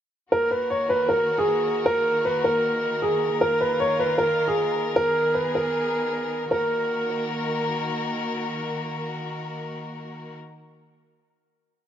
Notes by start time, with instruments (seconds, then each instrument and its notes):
0.32 string section D#3 A#3 F#4 A#4, grand piano A#4
0.51 grand piano B4
0.70 grand piano C#5
0.89 grand piano B4
1.09 grand piano A#4
1.38 grand piano G#4
1.86 grand piano A#4
2.25 grand piano B4
2.44 grand piano A#4
3.02 grand piano G#4
3.41 string section F4, grand piano A#4
3.61 grand piano B4
3.80 grand piano C#5
3.99 grand piano B4
4.18 grand piano A#4
4.48 grand piano G#4
4.96 string section B3 G#4, grand piano A#4
5.34 grand piano B4
5.55 grand piano A#4
6.51 string section D#3 A#3 F#4 A#4, grand piano A#4